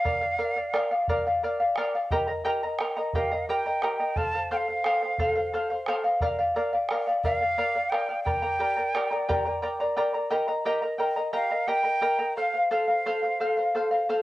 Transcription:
Already playing: F5
0.05 A#4 D5 F5, bombo rim, bombo low
0.21 D5 F5
0.38 A#4 D5 F5
0.56 D5 F5
0.73 A#4 D5 F5, bombo rim
0.91 D5 F5
1.08 A#4 D5 F5, bombo low
1.26 D5 F5, bombo rim
1.43 A#4 D5 F5
1.60 D5 F5
1.76 A#4 D5 F5, bombo rim
1.95 D5 F5
2.11 G4 A#4 D#5 G5 A#5, bombo rim, bombo low
2.27 A#4 D#5 A#5
2.45 G4 A#4 D#5 G5 A#5, bombo rim
2.63 A#4 D#5 A#5
2.79 A#4 D#5 G5 A#5, bombo rim
2.97 A#4 D#5 A#5
3.13 G4 A#4 D#5 F5 G5 A#5, bombo low
3.31 A#4 D#5 A#5
3.48 G4 A#4 D#5 G5 A#5, bombo rim
3.66 A#4 D#5 A#5
3.82 G4 A#4 D#5 G5 A#5, bombo rim
3.99 A#4 D#5 A#5
4.16 A4 C5 F5 A5, bombo rim, bombo low
4.34 C5 F5
4.51 A4 C5 F5 G5, bombo rim
4.57 F5
4.68 C5 F5
4.84 A4 C5 F5, bombo rim
5.03 C5 F5
5.18 A4 C5 F5, bombo low
5.36 C5 F5
5.52 A4 C5 F5, bombo rim
5.70 C5 F5
5.86 A4 C5 F5, bombo rim
6.04 C5 F5
6.21 A#4 D5 F5, bombo rim, bombo low
6.39 D5 F5
6.55 A#4 D5 F5, bombo rim
6.73 D5 F5
6.89 A#4 D5 F5, bombo rim
7.07 D5 F5
7.24 A#4 D5 F5, bombo low
7.41 D5 F5
7.58 A#4 D5 F5, bombo rim
7.75 D5 F5
7.89 A#4 D5 F5 G5, bombo rim
8.09 D5 F5
8.23 A#4 D5 G5 A#5, bombo low
8.42 A#4 D5 A#5, bombo rim
8.59 G4 A#4 D5 G5 A#5
8.76 A#4 D5 A#5
8.94 G4 A#4 D5 G5 A#5, bombo rim
9.11 A#4 D5 A#5
9.28 G4 A#4 D5 G5 A#5, bombo low
9.45 A#4 D5 A#5
9.62 A#4 D5 G5 A#5, bombo rim
9.80 A#4 D5 A#5
9.97 G4 A#4 D5 G5 A#5
10.14 A#4 D5 A#5
10.31 G4 A#4 D#5 G5 A#5
10.48 A#4 D#5 A#5
10.65 G4 A#4 D#5 G5 A#5
10.82 A#4 D#5 A#5
10.98 A#4 D#5 G5 A#5
11.16 A#4 D#5 A#5
11.33 G4 A#4 D#5 F5 G5 A#5
11.51 A#4 D#5 A#5
11.68 G4 A#4 D#5 G5 A#5
11.84 A#4 D#5 A#5
12.01 G4 A#4 D#5 G5 A#5
12.19 A#4 D#5 A#5
12.37 A4 C5 F5
12.54 C5 F5
12.71 A4 C5 F5
12.88 C5 F5
13.06 A4 C5 F5
13.23 C5 F5
13.40 A4 C5 F5
13.57 C5 F5
13.75 A4 C5 F5
13.91 C5 F5
14.09 A4 C5 F5

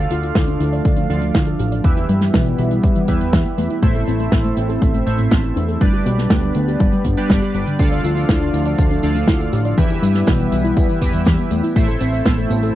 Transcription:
Already playing: D3 F3 A3 D4 F4 A4 D5 F5
0.00 D5
0.10 D2 F4, closed hi-hat
0.23 F4, closed hi-hat
0.35 D2 E4, kick, snare, closed hi-hat
0.47 D4, closed hi-hat
0.60 D2 E4, closed hi-hat
0.73 D5, closed hi-hat
0.85 D2 D4, kick, closed hi-hat
0.96 D4, closed hi-hat
1.10 D2 D3 D4 F4 A4 D5 F5, closed hi-hat
1.22 D3, closed hi-hat
1.34 D2 E4, kick, snare, closed hi-hat
1.47 A4, closed hi-hat
1.59 A1 G4, closed hi-hat
1.72 D5, closed hi-hat
1.84 E2 E3 G3 B3 E4 G4 B4 E5, kick, closed hi-hat
1.97 E4, closed hi-hat
2.09 G2 G3, closed hi-hat
2.21 G3, snare, closed hi-hat
2.34 B1 E3, kick, snare, closed hi-hat
2.46 E3, closed hi-hat
2.58 B1 E3, closed hi-hat
2.71 E4, closed hi-hat
2.83 E2 E3, kick, closed hi-hat
2.95 E3, closed hi-hat
3.08 E2 E3 E4 G4 B4 E5, kick, closed hi-hat
3.21 E2, closed hi-hat
3.33 E2 E3, kick, snare, closed hi-hat
3.45 B3, closed hi-hat
3.58 E2 A3, closed hi-hat
3.70 E4, closed hi-hat
3.82 A1 A3 C4 E4 A4 C5 E5, kick, closed hi-hat
3.95 A4, closed hi-hat
4.07 A1 C4, closed hi-hat
4.20 C4, closed hi-hat
4.32 A1 B3, kick, snare, closed hi-hat
4.44 A3, closed hi-hat
4.57 A1 B3, closed hi-hat
4.69 A4, closed hi-hat
4.82 A1 A3, kick, closed hi-hat
4.94 A3, closed hi-hat
5.06 A1 A3 E4 A4 C5 E5, closed hi-hat
5.19 A2, closed hi-hat
5.31 A1 B3, kick, snare, closed hi-hat
5.44 E4, closed hi-hat
5.56 E2 D4, closed hi-hat
5.68 A4, closed hi-hat
5.81 G1 G3 B3 D4 G4 B4 D5, kick, closed hi-hat
5.93 G4, closed hi-hat
6.06 B1 B3, closed hi-hat
6.18 B3, snare, closed hi-hat
6.30 D2 A3, kick, snare, closed hi-hat
6.43 G3, closed hi-hat
6.55 D2 A3, closed hi-hat
6.68 G4, closed hi-hat
6.80 G1 G3, kick, closed hi-hat
6.92 G3, closed hi-hat
7.04 G1 B3, kick, closed hi-hat
7.17 G3 D4 G4 B4 D5, closed hi-hat
7.29 G1 G3, kick, snare, closed hi-hat
7.42 G3 D4 G4 B4 D5, closed hi-hat
7.54 G1 G2, closed hi-hat
7.67 D3, closed hi-hat
7.79 D2 D3 F3 A3 D4 F4 A4 D5 F5, kick, closed hi-hat, tambourine
7.91 D5, closed hi-hat, tambourine
8.04 D2 F4, closed hi-hat, tambourine
8.16 F4, closed hi-hat, tambourine
8.29 D2 E4, kick, snare, closed hi-hat, tambourine
8.41 D4, closed hi-hat, tambourine
8.54 D2 E4, closed hi-hat, tambourine
8.65 D5, closed hi-hat, tambourine
8.78 D2 D4, kick, closed hi-hat, tambourine
8.91 D4, closed hi-hat, tambourine
9.03 D2 D3 D4 F4 A4 D5 F5, closed hi-hat, tambourine
9.15 D3, closed hi-hat, tambourine
9.28 D2 E4, kick, snare, closed hi-hat, tambourine
9.40 A4, closed hi-hat, tambourine
9.53 A1 G4, closed hi-hat, tambourine
9.65 D5, closed hi-hat, tambourine
9.77 E2 E3 G3 B3 E4 G4 B4 E5, kick, closed hi-hat, tambourine
9.90 E4, closed hi-hat, tambourine
10.02 G2 G3, closed hi-hat, tambourine
10.14 G3, snare, closed hi-hat, tambourine
10.26 B1 E3, kick, snare, closed hi-hat, tambourine
10.39 E3, closed hi-hat, tambourine
10.52 B1 E3, closed hi-hat, tambourine
10.64 E4, closed hi-hat, tambourine
10.77 E2 E3, kick, closed hi-hat, tambourine
10.89 E3, closed hi-hat, tambourine
11.01 E2 E3 E4 G4 B4 E5, kick, closed hi-hat, tambourine
11.13 E2, closed hi-hat, tambourine
11.25 E2 E3, kick, snare, closed hi-hat, tambourine
11.38 B3, closed hi-hat, tambourine
11.51 E2 A3, closed hi-hat, tambourine
11.63 E4, closed hi-hat, tambourine
11.76 A1 A3 C4 E4 A4 C5 E5, kick, closed hi-hat, tambourine
11.88 A4, closed hi-hat, tambourine
12.00 A1 C4, closed hi-hat, tambourine
12.13 C4, closed hi-hat, tambourine
12.25 A1 B3, kick, snare, closed hi-hat, tambourine
12.38 A3, closed hi-hat, tambourine
12.50 A1 B3, closed hi-hat, tambourine
12.63 A4, closed hi-hat, tambourine

